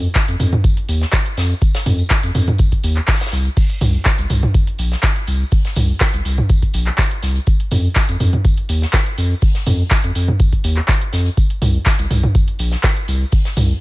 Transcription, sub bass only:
0.28 0.36 F2 medium
0.40 0.56 F2 medium
0.88 1.05 D#2 medium
1.37 1.54 F2 loud
1.86 2.03 F2 loud
2.23 2.31 F2 medium
2.35 2.51 F2 medium
2.84 3.00 D#2 medium
3.32 3.49 C2 loud
3.81 3.98 C2 loud
4.18 4.26 C2 medium
4.30 4.46 C2 medium
4.79 4.95 A#1 medium
5.28 5.44 C2 loud
5.76 5.93 C2 loud
6.14 6.21 C2 medium
6.25 6.42 C2 medium
6.74 6.90 A#1 medium
7.23 7.39 C2 loud
7.72 7.88 F2 loud
8.09 8.16 F2 medium
8.20 8.37 F2 medium
8.69 8.86 D#2 loud
9.18 9.34 F2 loud
9.67 9.83 F2 loud
10.04 10.11 F2 medium
10.15 10.32 F2 medium
10.64 10.81 D#2 medium
11.13 11.29 F2 loud
11.62 11.78 C2 loud
11.99 12.07 C2 medium
12.11 12.27 C2 medium
12.59 12.76 A#1 medium
13.08 13.25 C2 loud
13.57 13.73 C2 loud

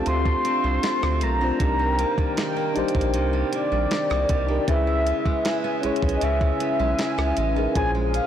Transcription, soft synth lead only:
0.08 1.25 C6 loud
1.23 2.76 A#5 loud
3.54 4.65 D5 loud
4.69 5.80 E5 loud
6.16 6.25 D#5 medium
6.23 7.76 E5 loud
7.77 7.91 G#5 loud
8.15 8.27 F5 loud

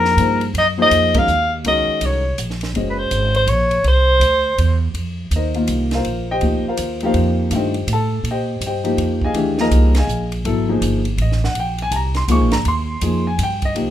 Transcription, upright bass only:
0.00 0.16 F2 medium
0.17 0.53 G2 medium
0.54 0.90 F#2 medium
0.91 1.27 F2 medium
1.28 1.64 D#2 medium
1.65 1.86 C#2 medium
1.88 muted upright bass stroke soft
2.01 2.37 C2 medium
2.38 2.73 A#1 medium
2.74 3.10 F#1 medium
3.11 3.46 G#1 medium
3.47 3.83 A#1 medium
3.84 4.19 C2 medium
4.20 4.56 D2 medium
4.58 4.93 E2 medium
4.94 5.30 F2 medium
5.31 5.67 D#2 medium
5.68 6.04 C2 medium
6.06 6.41 A#1 medium
6.42 6.63 D2 medium
6.65 muted upright bass stroke soft
6.78 7.13 D#2 medium
7.14 7.50 F2 medium
7.51 7.87 G2 medium
7.87 8.23 A2 medium
8.24 8.60 A#2 medium
8.61 8.97 G2 medium
8.97 9.33 F2 medium
9.34 9.70 D#2 medium
9.71 10.07 C2 medium
10.07 10.44 A#1 medium
10.45 10.81 G#1 medium
10.81 11.17 G1 medium
11.17 11.54 A1 medium
11.54 11.90 A#1 medium
11.91 12.27 C2 medium
12.28 12.41 C#2 loud
12.41 12.53 A#1 medium
12.54 12.65 G#1 medium
12.65 13.01 D#2 medium
13.02 13.38 F2 medium
13.38 13.74 G2 medium
13.75 13.90 C2 medium

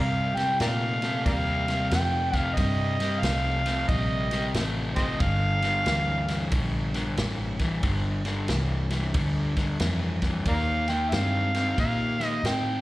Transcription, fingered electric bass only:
0.00 0.34 C3 medium
0.36 muted fingered electric bass stroke soft
0.60 1.24 A#2 medium
1.26 1.90 D#2 medium
1.92 2.55 F2 medium
2.57 3.21 G2 medium
3.22 3.87 C2 medium
3.89 4.53 A#1 medium
4.54 5.18 A1 medium
5.21 5.84 G1 medium
5.86 6.50 D2 medium
6.52 7.16 A#1 medium
7.18 7.82 A1 medium
7.84 8.47 G1 medium
8.49 9.13 C2 medium
9.15 9.79 D2 medium
9.80 10.44 F2 medium
10.46 11.10 D#2 medium
11.12 11.76 G2 medium
11.78 12.42 A#2 medium
12.43 12.81 A2 medium

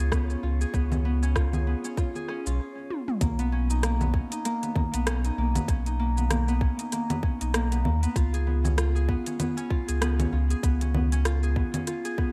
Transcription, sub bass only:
0.00 0.36 C#2 medium
0.43 0.65 C#2 loud
0.74 1.75 C#2 loud
2.46 2.59 B1 medium
3.21 4.22 B1 loud
4.94 5.31 B1 medium
5.38 5.60 B1 medium
5.68 6.69 B1 loud
7.41 7.87 B1 medium
7.85 8.07 D#2 medium
8.16 9.17 C#2 loud
9.89 10.26 C#2 medium
10.32 10.54 C#2 loud
10.63 11.64 C#2 loud

